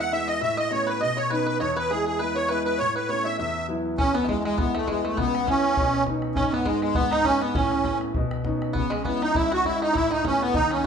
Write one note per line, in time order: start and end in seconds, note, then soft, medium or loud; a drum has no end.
0.00 0.38 E2 medium
0.00 0.10 G#3 soft
0.00 0.11 B3 soft
0.00 0.10 E4 soft
0.00 0.12 F#5 loud
0.00 0.12 F#5 medium
0.12 0.41 G#3 soft
0.12 0.41 B3 soft
0.12 0.41 E4 medium
0.12 0.29 E5 loud
0.12 0.27 E5 medium
0.28 0.40 D#5 medium
0.28 0.41 D#5 loud
0.41 0.99 A2 medium
0.41 0.57 E5 medium
0.41 0.59 E5 loud
0.57 0.70 D#5 medium
0.57 0.72 D#5 medium
0.71 1.00 A3 soft
0.71 1.00 B3 soft
0.71 1.00 C#4 soft
0.71 0.86 C#5 medium
0.71 0.88 C#5 loud
0.87 0.99 B4 medium
0.87 1.02 B4 medium
1.01 1.59 B2 medium
1.01 1.17 D#5 medium
1.01 1.19 D#5 loud
1.17 1.29 C#5 medium
1.17 1.31 C#5 medium
1.30 1.60 B3 medium
1.30 1.60 C#4 soft
1.30 1.60 D#4 medium
1.30 1.45 B4 medium
1.30 1.47 B4 medium
1.47 1.59 B4 medium
1.47 1.58 B4 medium
1.60 2.76 E2 medium
1.60 1.76 C#5 medium
1.60 1.78 C#5 medium
1.60 1.62 D#5 medium
1.76 1.89 B4 medium
1.76 1.92 B4 medium
1.91 2.19 G#3 soft
1.91 2.19 B3 soft
1.91 2.19 E4 soft
1.91 2.05 G#4 medium
2.06 2.19 G#4 medium
2.06 2.20 G#4 medium
2.19 2.49 G#3 soft
2.19 2.49 B3 soft
2.19 2.49 E4 medium
2.19 2.35 B4 medium
2.19 2.37 B4 medium
2.36 2.48 C#5 medium
2.36 2.50 C#5 medium
2.48 2.79 G#3 medium
2.48 2.79 B3 soft
2.48 2.79 E4 medium
2.48 2.64 B4 medium
2.48 2.63 B4 medium
2.65 2.79 B4 medium
2.78 3.38 A2 medium
2.78 2.94 C#5 loud
2.78 2.95 C#5 medium
2.96 3.10 B4 medium
3.08 3.38 A3 soft
3.08 3.39 B3 soft
3.08 3.39 C#4 soft
3.08 3.26 C#5 medium
3.25 3.37 E5 medium
3.25 3.38 E5 medium
3.38 3.97 E2 medium
3.38 3.66 E5 medium
3.38 3.67 E5 medium
3.68 3.97 F#3 soft
3.68 3.98 B3 soft
3.68 3.98 E4 medium
3.98 5.14 E2 medium
3.98 4.14 C#4 medium
3.98 4.16 C#4 loud
3.98 bodhran medium
4.14 4.27 B3 medium
4.14 4.24 B3 medium
4.14 bodhran medium
4.25 4.57 G#3 soft
4.25 4.28 A3 medium
4.29 4.44 G#3 medium
4.29 4.43 G#3 medium
4.29 4.57 B3 soft
4.29 4.58 E4 medium
4.29 bodhran medium
4.44 4.58 G#3 loud
4.44 4.59 G#3 medium
4.44 bodhran medium
4.58 4.87 G#3 soft
4.58 4.73 B3 medium
4.58 4.87 B3 soft
4.58 4.76 B3 medium
4.58 4.87 E4 medium
4.58 bodhran medium
4.75 4.87 A3 medium
4.75 4.89 A3 medium
4.75 bodhran medium
4.87 5.04 G#3 medium
4.87 5.17 G#3 medium
4.87 5.04 G#3 medium
4.87 5.17 B3 soft
4.87 5.17 E4 medium
4.87 bodhran medium
5.05 5.17 A3 medium
5.05 5.18 A3 medium
5.05 bodhran medium
5.17 5.76 C#2 medium
5.17 5.45 B3 medium
5.17 5.49 B3 loud
5.17 bodhran medium
5.35 bodhran medium
5.47 5.77 B3 soft
5.47 6.03 C#4 medium
5.47 6.04 C#4 loud
5.47 5.77 C#4 soft
5.47 5.77 E4 medium
5.47 bodhran medium
5.64 bodhran medium
5.77 6.36 B2 medium
5.77 bodhran medium
5.94 bodhran medium
6.06 6.36 B3 soft
6.06 6.37 C#4 soft
6.06 6.37 D#4 medium
6.06 bodhran medium
6.22 bodhran medium
6.35 7.53 G#2 medium
6.35 6.53 C#4 loud
6.35 6.52 C#4 medium
6.35 bodhran medium
6.52 6.66 B3 medium
6.52 6.67 B3 medium
6.52 bodhran medium
6.65 6.80 G#3 loud
6.65 6.81 G#3 medium
6.65 6.96 G#3 soft
6.65 6.96 B3 soft
6.65 6.96 D#4 soft
6.65 bodhran medium
6.82 6.96 G#3 medium
6.82 6.95 G#3 medium
6.82 bodhran medium
6.95 7.25 G#3 medium
6.95 7.13 B3 loud
6.95 7.11 B3 medium
6.95 7.25 B3 soft
6.95 7.25 D#4 medium
6.95 bodhran medium
7.11 7.26 D#4 loud
7.11 7.24 D#4 medium
7.11 bodhran medium
7.24 7.55 G#3 medium
7.24 7.55 B3 soft
7.24 7.42 C#4 loud
7.24 7.41 C#4 medium
7.24 7.55 D#4 medium
7.24 bodhran medium
7.42 7.56 B3 medium
7.42 7.55 B3 medium
7.42 bodhran medium
7.55 8.13 A2 medium
7.55 7.83 C#4 medium
7.55 7.99 C#4 medium
7.55 bodhran medium
7.71 bodhran medium
7.85 8.14 A3 soft
7.85 8.14 B3 soft
7.85 8.01 C#4 medium
7.85 8.15 C#4 medium
7.85 bodhran medium
8.01 bodhran medium
8.14 8.74 B2 medium
8.14 bodhran medium
8.31 bodhran medium
8.45 8.74 B3 medium
8.45 8.74 C#4 soft
8.45 8.74 D#4 medium
8.45 bodhran medium
8.62 bodhran medium
8.73 9.91 C#3 medium
8.73 8.89 B3 medium
8.73 8.93 B3 medium
8.73 bodhran medium
8.90 9.03 G#3 medium
8.90 9.02 G#3 medium
8.90 bodhran medium
9.02 9.33 G#3 soft
9.02 9.20 B3 medium
9.02 9.05 C#4 medium
9.02 9.33 C#4 soft
9.02 9.34 E4 soft
9.02 bodhran medium
9.07 9.23 B3 medium
9.22 9.34 D#4 medium
9.22 9.36 D#4 loud
9.22 bodhran medium
9.35 9.63 G#3 medium
9.35 9.63 C#4 soft
9.35 9.64 E4 medium
9.35 9.51 E4 medium
9.35 9.52 E4 loud
9.35 bodhran medium
9.52 9.64 F#4 medium
9.52 9.65 F#4 loud
9.52 bodhran medium
9.64 9.93 G#3 medium
9.64 9.94 C#4 medium
9.64 9.94 E4 medium
9.64 9.80 E4 medium
9.64 9.81 E4 loud
9.64 bodhran medium
9.82 9.93 D#4 medium
9.82 9.95 D#4 loud
9.82 bodhran medium
9.94 10.52 A2 medium
9.94 10.09 E4 medium
9.94 10.12 E4 loud
9.94 bodhran medium
10.11 10.24 D#4 medium
10.11 10.25 D#4 medium
10.11 bodhran medium
10.25 10.53 A3 soft
10.25 10.53 B3 soft
10.25 10.40 C#4 medium
10.25 10.53 C#4 soft
10.25 10.42 C#4 loud
10.25 bodhran medium
10.41 10.55 B3 loud
10.41 10.54 B3 medium
10.41 bodhran medium
10.54 10.87 D#2 medium
10.54 10.71 D#4 loud
10.54 10.70 D#4 medium
10.54 bodhran medium
10.71 10.83 C#4 medium
10.71 10.85 C#4 medium
10.71 bodhran medium